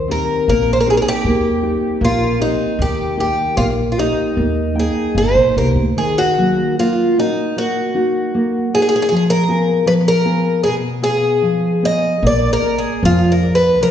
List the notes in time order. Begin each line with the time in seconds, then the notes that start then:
Already playing: D#2 D#3 C5
0.08 C4 D#4 G4 A#4
0.48 A#1 A#3 A#4
0.73 C5
0.81 A#4
0.86 C4 D#4 G4
0.90 G#4
0.97 A#4
1.02 G#4
1.08 G4
1.25 D#2 A#3
1.62 C4 D#4 G4
2.01 A#1 A#3 F4
2.39 C4 D#4 G4
2.79 D#2 D#3 G4
3.17 A#3 D#4 G4
3.56 A#1 A#3 F4
3.92 F4
3.97 A#3 D#4 G4
4.36 D#2 A#3
4.75 A#3 D#4 G5
4.79 G#4
5.15 G1 A#3 C5
5.35 A#1
5.56 C2 A#3 D#4 G4 A#4
5.76 D2
5.97 D#3 G#4
6.18 F#4
6.38 F#3 A#3 D#4
6.79 A#3 F4
7.18 A#3 D#4 F#4
7.56 A#3 F#4
7.94 A#3 D#4 F#4
8.34 A#3
8.74 A#3 D#4 F#4 G#4
8.82 G#4
8.89 G#4
8.96 G#4
9.02 G#4
9.09 F3 G#4
9.17 G#4
9.30 A#4
9.48 B3 F4 G#4
9.86 F3 B4
10.08 A#4
10.25 B3 F4 G#4
10.63 B2 G#4
11.02 B3 F4 G#4
11.42 F3
11.83 B3 F4 G#4 D#5
12.22 A#1 A#3
12.27 D5
12.53 A#4
12.62 G#4 A#4 D5
12.78 G#4
13.03 F2 F3 F4
13.32 A#4
13.42 G#4 A#4 D5
13.55 B4
13.80 A#1 F3 A#4